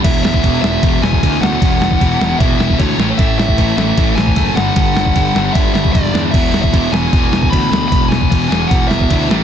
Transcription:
<<
  \new Staff \with { instrumentName = "Lead electric guitar" } { \time 4/4 \key e \mixolydian \tempo 4 = 152 e''8 e''4 e''4 gis''4 fis''8~ | fis''2 e''8 e''8 cis''8. r16 | e''8 e''4 e''4 gis''4 fis''8~ | fis''2 e''8 e''8 d''8. r16 |
e''8. e''8. gis''4. b''4 | b''8 gis''4 gis''8 fis''8 e''4 r8 | }
  \new Staff \with { instrumentName = "Distorted electric guitar" } { \clef bass \time 4/4 \key e \mixolydian <e, b, e>4 <e, b, e>8 <e, b, e>8 <e, b, e>4 <e, b, e>8 <e, b, e>8 | <e, b, e>4 <e, b, e>8 <e, b, e>8 <e, b, e>4 <e, b, e>8 <a, e a>8 | <a, e a>4 <a, e a>8 <a, e a>8 <a, e a>4 <a, e a>8 <g, d g>8 | <g, d g>4 <g, d g>8 <g, d g>8 <g, d g>4 <g, d g>8 <g, d g>8 |
<e, b, e>4 <e, b, e>8 <e, b, e>8 <e, b, e>4 <e, b, e>8 <e, b, e>8 | <e, b, e>4 <e, b, e>8 <e, b, e>8 <e, b, e>4 <e, b, e>8 <a, e a>8 | }
  \new Staff \with { instrumentName = "Distorted electric guitar" } { \clef bass \time 4/4 \key e \mixolydian <e, b, e>4 <e, b, e>8 <e, b, e>8 <e, b, e>4 <e, b, e>8 <e, b, e>8 | <e, b, e>4 <e, b, e>8 <e, b, e>8 <e, b, e>4 <e, b, e>8 <a, e a>8 | <a, e a>4 <a, e a>8 <a, e a>8 <a, e a>4 <a, e a>8 <g, d g>8 | <g, d g>4 <g, d g>8 <g, d g>8 <g, d g>4 <g, d g>8 <g, d g>8 |
<e, b, e>4 <e, b, e>8 <e, b, e>8 <e, b, e>4 <e, b, e>8 <e, b, e>8 | <e, b, e>4 <e, b, e>8 <e, b, e>8 <e, b, e>4 <e, b, e>8 <a, e a>8 | }
  \new Staff \with { instrumentName = "Picked electric bass" } { \clef bass \time 4/4 \key e \mixolydian e,,4 e,,8 e,,8 e,,8 e,,8 d,8 d,8 | e,,4 e,,8 e,,8 e,,8 e,,8 d,8 a,,8 | a,,4 a,,8 a,,8 a,,8 a,,8 fis,,8 g,,8 | g,,4 g,,8 g,,8 g,,8 g,,8 e,,8 e,8 |
e,,4 e,,8 e,,8 e,,8 e,,8 d,8 d,8 | e,,4 e,,8 e,,8 e,,8 e,,8 d,8 a,,8 | }
  \new DrumStaff \with { instrumentName = "Drums" } \drummode { \time 4/4 <cymc bd cymr>8 sn16 bd16 <bd cymr>8 sn8 <bd cymr>8 sn16 bd16 <bd cymr>8 sn8 | <bd cymr>8 sn16 bd16 <bd cymr>8 sn8 <bd cymr>8 sn16 bd16 <bd cymr>8 sn8 | <bd cymr>8 sn16 bd16 <bd cymr>8 sn8 <bd cymr>8 sn16 bd16 <bd cymr>8 sn8 | <bd cymr>8 sn16 bd16 <bd cymr>8 sn8 <bd cymr>8 sn16 bd16 <bd cymr>8 sn8 |
<cymc bd>8 sn16 bd16 <bd cymr>8 sn8 <bd cymr>8 sn16 bd16 <bd cymr>8 sn8 | <bd cymr>8 sn16 bd16 <bd cymr>8 sn8 <bd cymr>8 sn16 bd16 <bd cymr>8 sn8 | }
>>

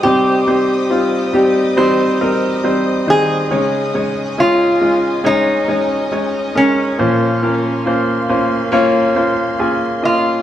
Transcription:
<<
  \new Staff \with { instrumentName = "String section" } { \time 4/4 \key c \phrygian \tempo 4 = 69 << { <ees'' g'' ees'''>1~ | <ees'' g'' ees'''>1 | c'''1 | } \\ { c''1 | <des' aes''>1 | <bes' f''>1 | } >> }
  \new Staff \with { instrumentName = "Resonator guitar played with a steel bar" } { \time 4/4 \key c \phrygian g'2. r8 aes'8~ | aes'4 f'4 ees'4. des'8~ | des'4 r2 r8 f'8 | }
  \new Staff \with { instrumentName = "Grand piano" } { \time 4/4 \key c \phrygian <g c' ees' c''>8 <g c' ees' c''>8 <g c' ees' f'>8 <g c' ees' g'>8 <g c' ees' c''>8 <g c' ees' bes'>8 <g c' ees' c''>8 <ees c' ees' c''>8 | <aes des' ees' des''>8 <aes des' ees' des''>8 <aes des' ees' des''>8 <aes des' ees' f'>8 <aes des' ees' des''>8 <aes des' ees' des''>8 <aes des' ees' des''>8 <aes des' ees' bes'>8 | <bes des' f' c''>8 <bes des' f' bes'>8 <bes des' f' c''>8 <bes des' f' c''>8 <bes des' f' des''>8 <bes des' f' c''>8 <bes des' f' aes'>8 <bes des' f' ees''>8 | }
  \new Staff \with { instrumentName = "Grand piano" } { \clef bass \time 4/4 \key c \phrygian c4. r2 r8 | des4. r2 r8 | <bes, f>4. r2 r8 | }
>>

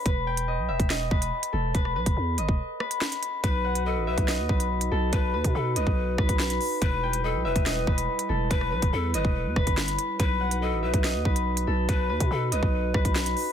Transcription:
<<
  \new Staff \with { instrumentName = "Harp" } { \time 4/4 \key e \minor \tempo 4 = 142 b'8 g''8 dis''8 e''8 dis''8 b'4 a'8 | b'8 b'4 dis''8 r8 b'8 b'4 | b'8 fis''8 dis''8 e''8 dis''8 b'4 a'8 | b'8 b'4 dis''8 r8 b'8 b'4 |
b'8 g''8 dis''8 e''8 dis''8 b'4 a'8 | b'8 b'4 dis''8 r8 b'8 b'4 | b'8 fis''8 dis''8 e''8 dis''8 b'4 a'8 | b'8 b'4 dis''8 r8 b'8 b'4 | }
  \new Staff \with { instrumentName = "Pan flute" } { \time 4/4 \key e \minor r1 | r1 | b'4 a'8 b'4. r4 | b'4 a'8 b'4. r4 |
b'4 a'8 b'4. r4 | b'4 a'8 b'4. r4 | b'4 a'8 b'4. r4 | b'4 a'8 b'4. r4 | }
  \new Staff \with { instrumentName = "Glass harmonica" } { \time 4/4 \key e \minor << { r1 | r1 | b'1~ | b'1~ |
b'1~ | b'1~ | b'1~ | b'1 | } \\ { r1 | r1 | <dis' fis'>1~ | <dis' fis'>1 |
<g e'>1~ | <g e'>1 | <dis' fis'>1~ | <dis' fis'>1 | } >> }
  \new Staff \with { instrumentName = "808-style bass" } { \clef bass \time 4/4 \key e \minor e,,4~ e,,16 b,,16 e,,16 e,,8. e,,8 r8 e,,8 | e,,8 b,,16 e,,16 e,8 g,,16 e,,16 r2 | b,,4~ b,,16 a,,16 b,,16 b,,8 dis,16 b,,4 b,,8 | b,,8 dis,16 b,16 b,8 c,16 b,,8. b,,16 b,,8. r8 |
e,,4~ e,,16 b,,16 e,,16 e,,8. e,,8 r8 e,,8 | e,,8 b,,16 e,,16 e,8 g,,16 e,,8 e,16 dis,,16 g,,8. r8 | b,,4~ b,,16 a,,16 b,,16 b,,8 dis,16 b,,4 b,,8 | b,,8 dis,16 b,16 b,8 c,16 b,,8. b,,16 b,,8. r8 | }
  \new DrumStaff \with { instrumentName = "Drums" } \drummode { \time 4/4 <hh bd>8. hh16 r8. <hh bd>16 <hh sn>8 bd16 hh16 r16 hh8. | <hh bd>16 ss8 <hh bd>16 r8 hh16 bd16 r8 ss16 hh16 sn16 hh16 hh8 | <hh bd>8. hh16 r8. <hh bd>16 <hh sn>8 bd16 hh16 r16 hh8. | <hh bd>8. <hh bd>16 r8 hh16 bd16 r8 <bd ss>16 <hh bd>16 sn16 hh16 hho8 |
<hh bd>8. hh16 r8. <hh bd>16 <hh sn>8 bd16 hh16 r16 hh8. | <hh bd>16 ss8 <hh bd>16 r8 hh16 bd16 r8 <bd ss>16 <hh bd>16 sn16 hh16 hh8 | <hh bd>8. hh16 r8. <hh bd>16 <hh sn>8 bd16 hh16 r16 hh8. | <hh bd>8. <hh bd>16 r8 hh16 bd16 r8 <bd ss>16 <hh bd>16 sn16 hh16 hho8 | }
>>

